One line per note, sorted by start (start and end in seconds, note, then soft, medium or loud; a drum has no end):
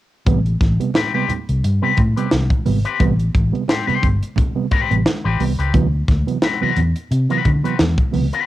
0.26 0.54 A1 loud
0.26 0.38 C3 medium
0.26 0.38 G3 medium
0.26 0.39 B3 loud
0.26 kick loud
0.26 closed hi-hat loud
0.26 muted conga medium
0.46 closed hi-hat soft
0.61 0.77 A1 medium
0.61 0.73 A2 medium
0.61 kick loud
0.61 snare soft
0.61 closed hi-hat medium
0.61 muted conga soft
0.80 0.89 C3 medium
0.80 0.89 G3 medium
0.80 0.89 B3 medium
0.80 closed hi-hat soft
0.94 1.07 A2 medium
0.94 1.11 C4 medium
0.94 1.12 G4 medium
0.94 1.12 B4 medium
0.94 snare loud
0.94 closed hi-hat medium
0.94 high conga medium
1.14 1.23 C3 medium
1.14 1.24 G3 medium
1.14 1.24 B3 medium
1.14 1.32 C4 medium
1.14 1.31 G4 medium
1.14 1.31 B4 medium
1.29 1.37 G3 soft
1.29 1.37 B3 soft
1.29 muted fingered electric bass stroke soft
1.29 closed hi-hat medium
1.29 low conga medium
1.49 1.61 C2 medium
1.49 closed hi-hat medium
1.64 1.79 G2 medium
1.64 closed hi-hat medium
1.82 1.92 C3 medium
1.82 1.92 G3 medium
1.82 1.92 B3 medium
1.82 2.00 C4 medium
1.82 2.00 G4 medium
1.82 1.99 B4 medium
1.97 2.09 A2 medium
1.97 2.13 A2 loud
1.97 kick medium
1.97 closed hi-hat medium
1.97 muted conga soft
1.97 low conga medium
2.17 2.26 C3 medium
2.17 2.26 G3 medium
2.17 2.26 B3 medium
2.17 2.30 C4 soft
2.17 2.30 G4 soft
2.17 2.30 B4 medium
2.17 closed hi-hat medium
2.31 2.48 C2 loud
2.31 2.40 G3 soft
2.31 2.40 B3 soft
2.31 snare loud
2.31 closed hi-hat medium
2.31 high conga medium
2.50 2.60 A2 medium
2.50 kick loud
2.50 closed hi-hat soft
2.50 high conga medium
2.65 2.82 G#1 medium
2.65 2.78 C3 medium
2.65 2.78 G3 medium
2.65 2.78 B3 medium
2.65 open hi-hat medium
2.65 high conga medium
2.85 3.03 C4 medium
2.85 3.02 G4 medium
2.85 3.02 B4 medium
2.85 closed hi-hat soft
3.00 3.28 A1 loud
3.00 3.12 C3 loud
3.00 3.12 G3 medium
3.00 3.12 B3 loud
3.00 kick loud
3.00 closed hi-hat medium
3.00 muted conga medium
3.19 closed hi-hat soft
3.34 3.50 A1 medium
3.34 3.46 A2 medium
3.34 kick loud
3.34 closed hi-hat medium
3.34 muted conga soft
3.52 3.62 C3 medium
3.52 3.62 G3 medium
3.52 3.63 B3 medium
3.52 closed hi-hat medium
3.68 3.80 A2 medium
3.68 3.85 C4 medium
3.68 3.85 G4 medium
3.68 3.86 C5 medium
3.68 snare loud
3.68 closed hi-hat medium
3.68 high conga medium
3.87 3.97 C3 medium
3.87 3.97 G3 medium
3.87 3.97 B3 medium
3.87 4.07 C4 medium
3.87 4.06 G4 medium
3.87 4.06 C5 medium
3.87 muted fingered electric bass stroke soft
3.87 closed hi-hat soft
4.02 4.19 G1 loud
4.02 4.11 G3 soft
4.02 4.11 B3 soft
4.02 kick medium
4.02 closed hi-hat medium
4.02 low conga medium
4.22 closed hi-hat medium
4.36 kick loud
4.36 closed hi-hat medium
4.36 low conga medium
4.55 4.65 C3 medium
4.55 4.65 G3 medium
4.55 4.65 B3 medium
4.71 4.83 A2 medium
4.71 4.93 C4 loud
4.71 4.94 G4 medium
4.71 4.94 B4 loud
4.71 muted fingered electric bass stroke soft
4.71 kick medium
4.71 closed hi-hat medium
4.71 muted conga medium
4.90 5.03 A1 medium
4.90 5.00 C3 medium
4.90 5.00 G3 medium
4.90 5.00 B3 medium
4.90 closed hi-hat soft
5.05 5.13 G3 soft
5.05 5.13 B3 soft
5.05 snare loud
5.05 closed hi-hat medium
5.05 high conga medium
5.24 5.37 A1 medium
5.24 5.34 A2 medium
5.24 5.42 C4 medium
5.24 5.42 G4 medium
5.24 5.42 B4 medium
5.24 high conga medium
5.40 5.55 C2 medium
5.40 5.52 C3 medium
5.40 5.52 G3 medium
5.40 5.52 B3 medium
5.40 open hi-hat medium
5.40 high conga medium
5.59 5.71 C#2 medium
5.59 5.73 C4 soft
5.59 5.72 G4 soft
5.59 5.72 B4 medium
5.59 closed hi-hat soft
5.74 6.02 D2 loud
5.74 5.86 C3 medium
5.74 5.86 E3 medium
5.74 5.86 F#3 medium
5.74 5.86 B3 loud
5.74 kick loud
5.74 closed hi-hat loud
5.74 muted conga medium
6.08 6.24 D2 loud
6.08 kick loud
6.08 snare soft
6.08 closed hi-hat medium
6.08 muted conga soft
6.27 6.36 C3 medium
6.27 6.37 E3 medium
6.27 6.37 F#3 medium
6.27 6.37 B3 medium
6.27 closed hi-hat soft
6.42 6.59 C4 medium
6.42 6.59 F#4 medium
6.42 6.60 B4 medium
6.42 snare loud
6.42 closed hi-hat medium
6.42 high conga medium
6.61 6.71 C3 medium
6.61 6.71 E3 medium
6.61 6.71 F#3 medium
6.61 6.71 B3 medium
6.61 6.80 C4 medium
6.61 6.79 F#4 medium
6.61 6.79 B4 medium
6.61 muted fingered electric bass stroke soft
6.76 6.92 E2 medium
6.76 6.84 F#3 soft
6.76 6.84 B3 soft
6.76 closed hi-hat medium
6.76 low conga medium
6.96 closed hi-hat medium
7.11 7.26 C3 medium
7.11 closed hi-hat medium
7.29 7.39 C3 medium
7.29 7.39 E3 medium
7.29 7.39 F#3 medium
7.29 7.39 B3 medium
7.29 7.49 C4 medium
7.29 7.49 F#4 medium
7.29 7.49 B4 medium
7.29 closed hi-hat soft
7.45 7.61 D3 loud
7.45 kick medium
7.45 closed hi-hat medium
7.45 muted conga soft
7.45 low conga medium
7.64 7.73 C3 medium
7.64 7.73 E3 medium
7.64 7.73 F#3 medium
7.64 7.73 B3 medium
7.64 7.78 C4 soft
7.64 7.78 F#4 medium
7.64 7.77 B4 medium
7.64 closed hi-hat soft
7.79 7.95 E2 medium
7.79 7.87 F#3 soft
7.79 7.87 B3 soft
7.79 snare loud
7.79 closed hi-hat medium
7.79 high conga medium
7.98 kick loud
7.98 closed hi-hat soft
7.98 high conga medium
8.12 8.29 C#2 medium
8.12 8.25 C3 medium
8.12 8.25 E3 medium
8.12 8.25 F#3 medium
8.12 8.25 B3 medium
8.12 open hi-hat medium
8.12 high conga medium
8.33 8.46 C4 medium
8.33 8.46 F#4 medium
8.33 8.46 B4 medium
8.33 closed hi-hat soft